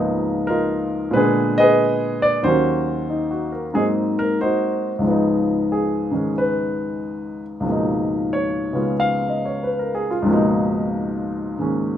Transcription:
0.00 1.12 C#2 medium
0.00 1.13 G#2 soft
0.00 1.14 F3 soft
0.00 1.14 A#3 soft
0.00 1.13 B3 soft
0.00 0.48 D#4 medium
0.47 1.10 D#4 medium
0.47 1.10 F4 medium
0.47 1.15 A#4 medium
1.11 2.42 A#2 medium
1.11 2.43 G#3 medium
1.11 2.44 B3 soft
1.11 1.58 B4 medium
1.16 2.45 D3 medium
1.16 1.58 G#4 medium
1.58 2.41 G#4 medium
1.58 2.41 B4 medium
1.58 2.19 D#5 loud
2.22 2.44 D5 medium
2.43 3.74 D#2 medium
2.43 3.74 D#3 soft
2.43 3.73 F#3 soft
2.43 3.29 F#4 medium
2.43 3.78 C5 medium
2.48 3.76 C#4 medium
3.09 3.50 D#4 soft
3.31 3.64 F#4 soft
3.52 3.86 A#4 soft
3.74 5.00 G#2 soft
3.74 5.05 F#3 soft
3.74 5.05 A#3 soft
3.74 5.05 C4 medium
3.74 4.40 D#4 medium
3.74 3.85 G#4 medium
4.19 4.38 A#4 medium
4.41 5.02 D#4 medium
4.41 5.02 F#4 medium
4.41 4.91 C5 medium
4.99 7.59 C#2 soft
4.99 6.10 G#2 soft
5.03 7.63 F3 soft
5.03 7.67 B3 soft
5.10 7.69 D#4 medium
5.72 6.32 G#4 medium
6.11 7.61 G#2 soft
6.11 7.65 D#3 soft
6.11 7.65 G#3 soft
6.11 7.66 C#4 soft
6.38 7.42 B4 medium
7.60 10.21 C#2 soft
7.60 10.23 G#2 soft
7.64 10.25 F3 soft
7.64 10.27 A#3 soft
7.69 10.29 B2 soft
7.69 10.30 D#4 medium
8.33 8.93 C#5 medium
8.73 10.26 C#3 soft
8.73 10.26 G#3 soft
8.73 10.27 B3 soft
8.73 10.27 C#4 soft
8.73 10.09 F4 soft
9.00 10.03 F5 medium
9.29 9.49 D#5 soft
9.46 9.68 C#5 soft
9.63 9.93 B4 soft
9.79 10.07 A#4 medium
9.95 10.15 G#4 medium
10.11 10.33 F4 medium
10.22 11.97 C#2 medium
10.22 11.57 G#2 medium
10.22 11.97 F3 soft
10.28 11.97 B2 medium
10.28 11.59 A#3 medium
10.33 11.97 D#4 medium
11.59 11.97 G#2 soft
11.59 11.97 D#3 soft
11.59 11.97 G#3 soft
11.59 11.97 A#3 soft
11.59 11.97 C#4 soft

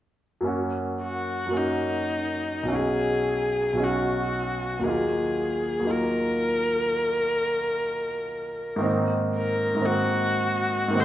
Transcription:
0.41 1.45 F#2 soft
0.41 1.47 F#3 soft
0.41 1.49 A#3 soft
0.45 1.52 C#4 soft
0.45 1.53 F#4 soft
1.03 1.58 F#4 soft
1.46 2.65 F#2 soft
1.46 2.64 F#3 soft
1.51 2.68 A#3 soft
1.51 2.66 C#4 soft
1.55 2.76 D#4 soft
1.55 2.70 F#4 soft
2.63 3.71 B1 soft
2.63 3.73 F#3 soft
2.68 3.76 C#4 soft
2.68 3.78 D#4 soft
2.72 3.79 F#4 soft
2.72 3.85 G#4 soft
3.73 4.81 B1 soft
3.73 4.79 F#3 soft
3.77 4.83 C#4 soft
3.77 4.84 D#4 soft
3.82 4.86 F#4 soft
3.82 4.88 F#4 soft
4.79 5.78 D#2 soft
4.79 5.80 F#3 soft
4.84 5.83 A#3 soft
4.84 5.85 D#4 soft
4.88 5.87 F4 soft
4.88 5.93 G#4 soft
5.80 8.78 D#2 soft
5.80 8.79 F#3 soft
5.85 8.79 A#3 soft
5.85 8.81 D#4 soft
5.89 8.82 F4 soft
5.89 8.87 A#4 medium
8.76 9.73 G#2 soft
8.76 9.75 D#3 soft
8.80 9.78 A#3 soft
8.80 9.80 C4 soft
8.85 9.83 D#4 soft
9.36 9.87 A#4 soft
9.75 10.87 G#2 soft
9.75 10.89 D#3 soft
9.79 10.91 A#3 soft
9.79 10.93 C4 soft
9.84 10.95 D#4 soft
9.84 11.01 F#4 medium
10.88 11.05 G#2 soft
10.88 11.05 D#3 soft
10.93 11.05 A#3 soft
10.93 11.05 C4 soft
10.97 11.05 D#4 soft
10.97 11.05 C5 medium

